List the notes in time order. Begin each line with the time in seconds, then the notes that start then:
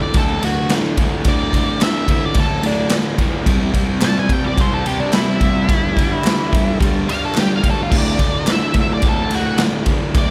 Already playing: D2 A2 D3
0.02 D5
0.14 D2 A2 D3 A4, kick, ride
0.43 D2 A2 D3 F#4, ride
0.69 D2 A2 D3, snare, clap, ride
0.97 D2 A2 D3, kick, ride
1.24 D2 A2 D3, kick, ride
1.29 D5
1.53 D2 A2 D3, kick, ride
1.80 D2 A2 D3 E5, snare, clap, ride
2.07 D2 A2 D3, kick, ride
2.11 E5
2.25 D5
2.34 D2 A2 D3, kick, ride
2.40 A4
2.62 D2 A2 D3, ride
2.67 D4
2.89 D2 A2 D3, snare, clap, ride
3.18 D2 A2 D3, kick, ride
3.45 C3 G3 C4, kick, ride
3.73 C3 G3 C4, kick, ride
4.00 C3 G3 C4 A5, snare, clap, ride
4.19 G#5
4.29 C3 G3 C4 G5, kick, ride
4.45 D5
4.57 C3 G3 C4 C5, kick, ride
4.73 A4
4.85 C3 G3 C4 G4, ride
5.00 D4
5.13 C3 G3 C4 E4, snare, clap, ride
5.40 C3 G3 C4, kick, ride
5.68 G2 D3 G3, kick, ride
5.97 G2 D3 G3, kick, ride
6.24 G2 D3 G3, snare, clap, ride
6.53 G2 D3 G3, kick, ride
6.79 G2 D3 G3, kick, ride
7.08 G2 D3 G3 F5, ride
7.25 A4
7.35 G2 D3 G3 G4, snare, clap, ride
7.56 F5
7.62 G2 D3 G3, kick, ride
7.70 A4
7.83 F4
7.90 D2 A2 D3, kick, crash
7.98 D5
8.18 D2 A2 D3, kick, ride
8.46 D2 A2 D3, snare, clap, ride
8.52 E5
8.74 D2 A2 D3, kick, ride
8.81 E5
8.94 D5
9.02 D2 A2 D3, kick, ride
9.09 A4
9.30 D2 A2 D3, ride
9.35 F#4
9.58 D2 A2 D3, snare, clap, ride
9.85 D2 A2 D3, kick, ride
10.14 D2 A2 D3, kick, ride
10.18 D5